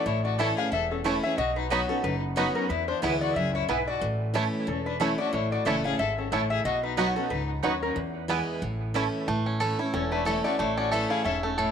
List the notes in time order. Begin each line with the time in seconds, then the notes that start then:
0.06 A1 A2 E4 C#5
0.25 F#4 D5
0.39 E3 A3 C#4 E4 A4 C#5 E5 A5
0.57 C#4 E4 G#4 F5
0.72 E1 E2 A4 E5
0.91 C#4 A4
1.04 E3 A3 C#4 E4 C#5 A5
1.23 C#4 E4 G#4 E5
1.38 B1 B2 F#4 D#5
1.56 D#4 B4
1.70 F#3 B3 D#4 F#4 B4 C#5 F#5 B5
1.89 C#4 D#4 F#4 A4
2.03 F#1 F#2 D#4 B4
2.36 F#3 B3 D#4 F#4 B4 C#5 F#5 B5
2.55 C#4 A#4
2.69 E2 E4 B4
2.88 D4 C5
3.02 D2 E3 G#3 B3 E4 B4 C#5 G#5
3.21 F#4 D5
3.36 C#2 F#2 G#4 E5
3.54 E4 C#5
3.69 B1 G#2 B3 E4 B4 G#5
3.88 F#4 D5
4.01 A1 A2
4.34 E3 A3 C#4 E4 C#5 A5
4.67 E1 E2 C#4 A4
4.86 D4 B4
5.00 E3 A3 C#4 E4 C#5 A5
5.18 C#4 E4 F#4 D5
5.33 A1 A2 E4 C#5
5.52 F#4 D5
5.65 F#1 E3 A3 C#4 E4 A4 C#5 E5 A5
5.84 C#4 E4 G#4 F5
5.99 G#1 G#2 A4 E5
6.18 C#4 A4
6.32 A1 A2 A3 C#4 E4 C#5 A5
6.50 G#4 E5
6.65 B1 B2 F#4 D#5
6.83 D#4 B4
6.97 F#3 B3 D#4 F#4 B4 C#5 F#5 B5
7.16 C#4 D#4 F#4 A4
7.30 C#2 G#2 D#4 B4
7.63 D#2 F#2 B3 D#4 F#4 B4 C#5 F#5 B5
7.82 C#4 A#4
7.96 E2
8.28 E3 G#3 B3 E4 B4 G#5
8.62 A1 A2
8.94 E3 A3 C#4 E4 C#5 A5
9.28 A1 A2 A3
9.46 C#4
9.60 E3 A3 C#4 E4 A4
9.79 C#4 E4
9.94 E1 E2 C#4 A4
10.12 A3 D4 B4
10.25 E3 A3 C#4 E4 A4 C#5
10.44 A3 C#4 E4 F#4 D5
10.59 A1 A2 A3 E4 C#5
10.77 C#4 F#4 D5
10.92 E3 A3 C#4 E4 A4 E5
11.10 E4 G#4 F5
11.24 E1 G#2 C#4 A4 E5
11.43 A3 C#4 A4
11.58 A2 E4 A4 C#5